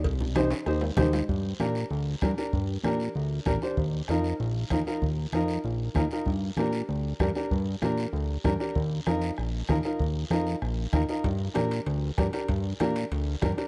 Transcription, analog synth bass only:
\new Staff \with { instrumentName = "Analog synth bass" } { \clef bass \time 4/4 \key g \minor \tempo 4 = 193 c,2 ees,4 ees,4 | g,4 bes,4 d,4 g,8 r8 | g,4 bes,4 d,4 bes,,8 r8 | ees,4 f,4 bes,,4 ees,8 r8 |
ees,4 f,4 bes,,4 ees,8 r8 | g,4 bes,4 d,4 g,8 r8 | g,4 bes,4 d,4 g,8 r8 | ees,4 f,4 bes,,4 ees,8 r8 |
ees,4 f,4 bes,,4 ees,8 r8 | g,4 bes,4 d,4 g,8 r8 | g,4 bes,4 d,4 g,8 r8 | }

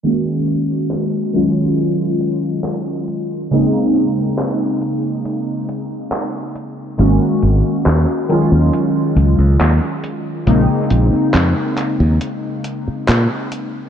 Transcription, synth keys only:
\new Staff \with { instrumentName = "Synth keys" } { \time 4/4 \key bes \minor \tempo 4 = 69 <ees aes bes des' ges'>4. <ees ges aes des' f'>2~ <ees ges aes des' f'>8 | <des aes bes c' ees'>1 | <ees aes bes des' ges'>4. <ees ges aes des' f'>2~ <ees ges aes des' f'>8 | <des aes bes c' ees'>1 | }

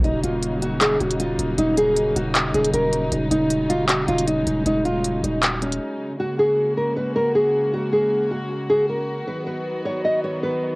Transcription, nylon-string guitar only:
\new Staff \with { instrumentName = "Nylon-string guitar" } { \time 4/4 \key fis \major \tempo 4 = 156 dis'8 eis'4 fis'8 gis'8 fis'8 eis'4 | dis'8 gis'4 fis'8 r8 gis'8 ais'4 | dis'8 dis'4 eis'8 fis'8 eis'8 dis'4 | dis'8 eis'4 dis'8 r8 cis'4. |
fis'8 gis'4 ais'8 b'8 ais'8 gis'4 | fis'8 gis'4 fis'8 r8 gis'8 ais'4 | b'8 b'4 cis''8 dis''8 cis''8 b'4 | }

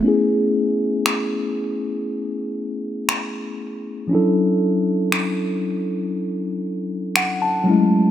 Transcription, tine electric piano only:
\new Staff \with { instrumentName = "Tine electric piano" } { \time 4/4 \key a \major \tempo 4 = 59 << { r1 | r2. fis''16 a''8. | } \\ { <a b cis' e' gis'>1 | <f fis cis' d' e' a'>2.~ <f fis cis' d' e' a'>8 <fis gis a cis' e'>8 | } >> }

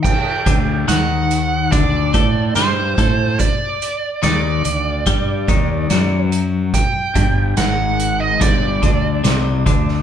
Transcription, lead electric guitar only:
\new Staff \with { instrumentName = "Lead electric guitar" } { \time 4/4 \tempo 4 = 72 g''4 fis''4 d''4 c''4 | d''4 d''2~ d''8 r8 | g''4 fis''8. ees''16 d''2 | }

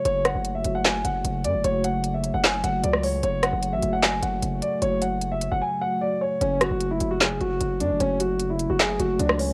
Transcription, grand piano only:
\new Staff \with { instrumentName = "Grand piano" } { \time 4/4 \key fis \minor \tempo 4 = 151 cis''8 fis''8. e''8 fis''16 gis''8 fis''4 d''8 | cis''8 fis''8. e''8 fis''16 gis''8 fis''8 d''8 cis''8 | cis''8 fis''8. e''8 fis''16 gis''8 fis''4 d''8 | cis''8 fis''8. e''8 fis''16 gis''8 fis''8 d''8 cis''8 |
cis'8 fis'8. e'8 fis'16 gis'8 fis'4 d'8 | cis'8 fis'8. e'8 fis'16 gis'8 fis'8 d'8 cis'8 | }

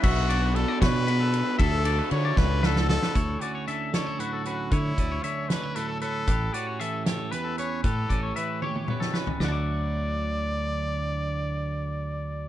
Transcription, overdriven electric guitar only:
\new Staff \with { instrumentName = "Overdriven electric guitar" } { \time 6/8 \key d \major \tempo 4. = 77 <b, fis b d'>8 <fis b d'>8 <b, fis b d'>8 <b, fis b d'>8 <b, fis b d'>4 | <d fis a d'>8 <fis a d'>8 <d fis a d'>8 <d fis a d'>8 <d fis a d'>4 | r2. | r2. |
r2. | r2. | r2. | r2. | }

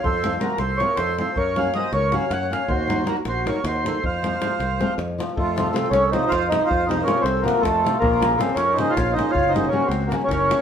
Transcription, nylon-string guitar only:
\new Staff \with { instrumentName = "Nylon-string guitar" } { \time 7/8 \tempo 4 = 158 r8 <f a c' f'>8 <f a c' f'>8 r8 <f a c' f'>8 r8 <f a c' f'>8 | r8 <ges bes des' ges'>8 <ges bes des' ges'>8 r8 <ges bes des' ges'>8 r8 <ges bes des' ges'>8 | r8 <ges bes ees' ges'>8 <ges bes ees' ges'>8 r8 <ges bes ees' ges'>8 r8 <ges bes ees' ges'>8 | r8 <f a c' f'>8 <f a c' f'>8 r8 <f a c' f'>8 r8 <f a c' f'>8 |
r8 <c f a c' f'>8 <c f a c' f'>8 r8 <c f a c' f'>8 r8 <c f a c' f'>8 | r8 <c f a c' f'>8 <c f a c' f'>8 r8 <c f a c' f'>8 r8 <c f a c' f'>8 | r8 <des f bes des' f'>8 <des f bes des' f'>8 r8 <des f bes des' f'>8 r8 <des f bes des' f'>8 | r8 <des ges bes des' ges'>8 <des ges bes des' ges'>8 r8 <des ges bes des' ges'>8 r8 <des ges bes des' ges'>8 | }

